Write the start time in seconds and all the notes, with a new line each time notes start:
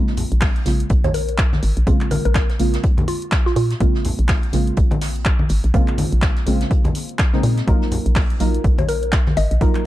Already playing: A#1 C#3 G#3 A#3 C4 F4
0.08 snare
0.17 closed hi-hat, open hi-hat, low conga
0.32 A#1, closed hi-hat
0.41 kick, snare, clap, closed hi-hat, open hi-hat
0.56 closed hi-hat
0.66 A#1 C#3 G#3 A#3 C4 F4, snare, closed hi-hat, open hi-hat
0.80 closed hi-hat
0.89 A#1, kick, closed hi-hat
1.04 C#5, closed hi-hat, high conga, low conga
1.14 A#4, closed hi-hat, open hi-hat
1.29 closed hi-hat
1.38 kick, snare, clap, closed hi-hat
1.53 snare, high conga
1.63 G#1, closed hi-hat, open hi-hat
1.77 A#1, closed hi-hat
1.87 A#1 C#3 G#3 A#3 C4 F4, kick, closed hi-hat
2.01 clap, closed hi-hat
2.11 A#4, closed hi-hat, open hi-hat, high conga, low conga
2.25 A#1 A#4, closed hi-hat
2.35 kick, snare, clap, closed hi-hat
2.50 snare, closed hi-hat
2.59 A#1 C#3 G#3 A#3 C4 F4, closed hi-hat, open hi-hat
2.73 snare, closed hi-hat
2.83 kick, closed hi-hat
2.98 closed hi-hat, high conga, low conga
3.08 F4, closed hi-hat, open hi-hat
3.22 closed hi-hat
3.31 kick, snare, clap, closed hi-hat
3.46 F4, snare
3.56 A#2 F4, closed hi-hat, open hi-hat
3.71 snare, closed hi-hat
3.80 A#1 C#3 G#3 A#3 C4 F4, kick, closed hi-hat
3.95 snare
4.05 closed hi-hat, open hi-hat, low conga
4.19 A#1, closed hi-hat
4.29 kick, snare, clap, closed hi-hat, open hi-hat
4.43 closed hi-hat
4.53 A#1 C#3 G#3 A#3 C4 F4, snare, closed hi-hat, open hi-hat
4.67 closed hi-hat
4.77 A#1, kick, closed hi-hat
4.91 closed hi-hat, high conga, low conga
5.01 snare, open hi-hat
5.16 closed hi-hat
5.25 kick, snare, clap, closed hi-hat
5.39 high conga
5.49 G#1, closed hi-hat, open hi-hat
5.64 A#1, closed hi-hat
5.74 A#1 C#3 G#3 A#3 C4 F4, kick, closed hi-hat
5.88 clap, closed hi-hat
5.98 closed hi-hat, open hi-hat, high conga, low conga
6.12 A#1, closed hi-hat
6.22 kick, snare, clap, closed hi-hat
6.36 snare, closed hi-hat
6.46 A#1 C#3 G#3 A#3 C4 F4, closed hi-hat, open hi-hat
6.61 snare, closed hi-hat
6.71 kick, closed hi-hat
6.84 closed hi-hat, high conga, low conga
6.95 closed hi-hat, open hi-hat
7.09 closed hi-hat
7.19 kick, snare, clap, closed hi-hat
7.33 C#3 G#3 A#3 C4 D#4, snare
7.43 A#2, closed hi-hat, open hi-hat
7.57 snare, closed hi-hat
7.67 A#1 F#3 A#3 D#4 F4 A#4, kick, closed hi-hat
7.82 snare
7.91 closed hi-hat, open hi-hat, low conga
8.06 A#1, closed hi-hat
8.16 kick, snare, clap, closed hi-hat, open hi-hat
8.30 closed hi-hat
8.40 A#1 F#3 A#3 D#4 F4 A#4, snare, closed hi-hat, open hi-hat
8.54 closed hi-hat
8.64 A#1, kick, closed hi-hat
8.78 C#5, closed hi-hat, high conga, low conga
8.88 A#4, closed hi-hat, open hi-hat
9.03 closed hi-hat
9.12 kick, snare, clap, closed hi-hat
9.26 snare, high conga
9.37 G#1 D#5, closed hi-hat, open hi-hat
9.51 A#1, closed hi-hat
9.61 A#1 F#3 A#3 D#4 F4 A#4, kick, closed hi-hat
9.75 clap, closed hi-hat